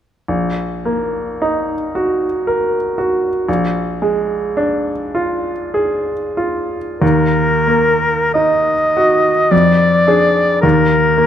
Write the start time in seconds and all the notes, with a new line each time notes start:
0.28 A#1
0.85 A#3
1.42 D#4
1.95 F#4
2.47 A#4
2.98 F#4
3.49 A#1
4.02 G#3
4.57 D4
5.15 F4
5.74 G#4
6.37 F4
7.01 D#2 A#4
7.68 A#3
8.34 D#4 D#5
8.97 F#4
9.51 F2 D5
10.07 D4 G#4
10.61 D#2 A#4
11.18 A#3